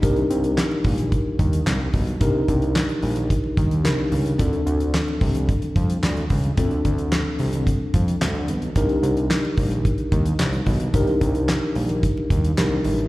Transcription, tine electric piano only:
X:1
M:4/4
L:1/8
Q:1/4=110
K:Cdor
V:1 name="Tine electric piano"
[DEGB]8 | [DEGB]6 [DEGB]2 | [CDFA]8 | [CDFA]8 |
[DEGB]8 | [DEGB]6 [DEGB]2 |]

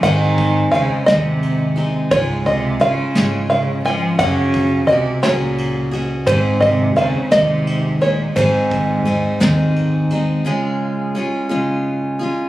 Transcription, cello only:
X:1
M:6/8
L:1/8
Q:3/8=58
K:Db
V:1 name="Cello" clef=bass
E,2 D, C,2 z | A,, C, D,2 D, F, | D,2 C, B,,2 z | A,, C, D, C,2 B,, |
A,,4 z2 | z6 |]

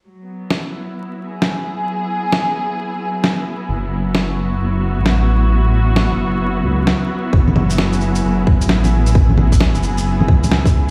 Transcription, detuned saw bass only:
X:1
M:4/4
L:1/16
Q:"Swing 16ths" 1/4=132
K:F#m
V:1 name="Detuned saw bass" clef=bass
z16 | z16 | F,,,8 F,,,3 A,,,4- A,,,- | A,,,4- A,,, F,,,4- F,,, C,,2 z4 |
F,,,8 F,,,3 A,,,4- A,,,- | A,,,4- A,,, F,,,4- F,,, C,,6 |]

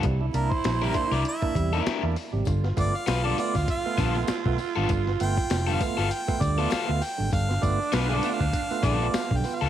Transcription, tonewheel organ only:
X:1
M:4/4
L:1/16
Q:"Swing 16ths" 1/4=99
K:Gmix
V:1 name="Tonewheel organ"
[C,G,] [DE] [_B,DE] z [DE] [C,G,] [B,DE] z2 [B,DE] [C,G,] [B,DE] z [B,DE] z [C,G,] | [G,,D,] [B,F] [A,B,F] z [B,F] [G,,D,] [A,B,F] z2 [A,B,F] [G,,D,] [A,B,F] z [A,B,F] z [G,,D,] | [G,,D,] [B,F] [A,B,F] z [B,F] [G,,D,] [A,B,F] z2 [A,B,F] [G,,D,] [A,B,F] z [A,B,F] z [G,,D,] | [G,,D,] [B,F] [A,B,F] z [B,F] [G,,D,] [A,B,F] z2 [A,B,F] [G,,D,] [A,B,F] [B,F] [G,,D,] [B,F] z |]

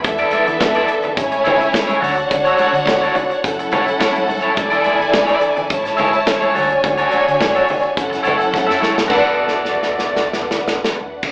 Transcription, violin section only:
X:1
M:4/4
L:1/8
Q:1/4=106
K:Bdor
V:1 name="Violin section"
[B,Ae]4 [Ecg]3 [Dcf]- | [Dcf]4 [CAf]4 | [Edg]4 [Eca]3 [Dcg]- | [Dcg]4 [CAf]4 |
[DBf]8 |]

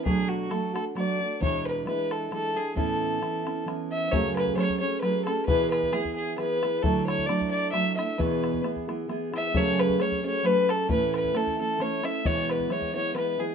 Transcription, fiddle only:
X:1
M:3/4
L:1/16
Q:"Swing" 1/4=133
K:Emix
V:1 name="Fiddle"
G2 F2 A2 A2 d4 | c2 B2 B2 A2 A2 G2 | A8 z2 e2 | c2 B2 c2 c2 B2 A2 |
B2 B2 G2 G2 B3- B/2 B/2 | A2 c2 d2 d2 e2 e2 | B4 z6 e2 | c2 B2 c2 c2 B2 A2 |
B2 B2 A2 A2 c2 e2 | c2 B2 c2 c2 B2 G2 |]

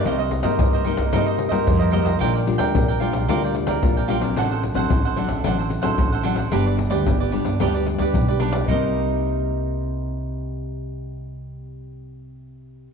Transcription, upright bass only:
X:1
M:4/4
L:1/16
Q:1/4=111
K:Cm
V:1 name="Upright bass" clef=bass
C,,3 G,, C,,3 C,, G,,3 G,, F,,4 | B,,,3 D,, B,,,3 B,,, D,,3 D,, B,,,4 | =A,,,3 A,,, A,,,3 A,,, A,,,3 A,,, A,,,4 | G,,,3 D,, G,,,3 G,,, D,,3 D,, =B,,,4 |
C,,16- | C,,16 |]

